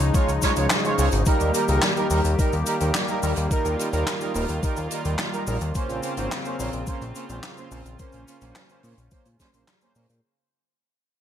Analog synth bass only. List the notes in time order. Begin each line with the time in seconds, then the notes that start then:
0.00 C#2
0.28 C#2
0.56 C#2
0.98 C#2
1.13 G#1
1.41 D#2
1.69 C#2
2.11 D#2
2.25 D#2
2.53 D#2
2.81 D#2
3.23 D#2
3.37 D#2
3.65 D#2
3.93 D#2
4.35 D#1
4.49 D#2
4.77 D#2
5.05 D#2
5.47 A#1
5.61 D#2
5.89 A#1
6.17 G#1
6.59 A#1
6.73 A#1
7.01 A#1
7.30 A#1
7.72 A#1
7.86 A#1
8.14 A#1
8.42 A#1
8.84 A#2
8.98 A#1
9.26 A#2
9.54 A#1
9.96 A#2
10.10 A#2